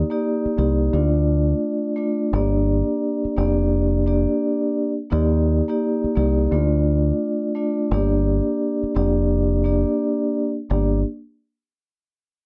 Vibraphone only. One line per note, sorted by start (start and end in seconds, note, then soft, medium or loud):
0.10 0.55 A#3 medium
0.10 0.56 D#4 medium
0.10 0.56 G4 medium
0.10 0.56 D5 loud
0.57 0.93 A#3 medium
0.57 0.93 D#4 medium
0.57 0.93 G4 medium
0.57 0.94 D5 medium
0.93 1.92 A3 medium
0.93 1.92 D4 medium
0.93 1.92 F4 medium
0.93 1.93 D5 loud
1.96 2.30 A3 medium
1.96 2.30 D4 medium
1.96 2.31 F4 medium
1.96 2.31 D5 medium
2.34 3.32 A#3 medium
2.34 3.32 D4 medium
2.34 3.32 G4 medium
2.34 3.33 D5 loud
3.37 4.03 A#3 medium
3.37 4.03 D4 medium
3.37 4.03 G4 medium
3.37 4.04 D5 loud
4.06 4.90 A#3 medium
4.06 4.90 D4 medium
4.06 4.90 G4 medium
4.06 4.91 D5 loud
5.10 5.63 A#3 medium
5.10 5.63 D#4 medium
5.10 5.63 G4 medium
5.10 5.64 D5 loud
5.68 6.13 A#3 medium
5.68 6.14 D#4 medium
5.68 6.14 G4 medium
5.68 6.14 D5 medium
6.16 6.51 A#3 medium
6.16 6.51 D#4 medium
6.16 6.52 G4 medium
6.16 6.52 D5 medium
6.52 7.50 A3 loud
6.52 7.51 D4 medium
6.52 7.51 F4 medium
6.52 7.51 D5 loud
7.55 7.88 A3 medium
7.55 7.89 D4 medium
7.55 7.89 F4 medium
7.55 7.89 D5 medium
7.92 8.90 A#3 medium
7.92 8.90 D4 medium
7.92 8.91 G4 medium
7.92 8.91 D5 loud
8.95 9.61 A#3 medium
8.95 9.61 D4 medium
8.95 9.62 G4 medium
8.95 9.62 D5 loud
9.64 10.48 A#3 medium
9.64 10.48 D4 medium
9.64 10.48 G4 medium
9.64 10.49 D5 loud
10.70 10.98 A#3 medium
10.70 10.98 D4 medium
10.70 10.98 G4 medium
10.70 10.98 D5 loud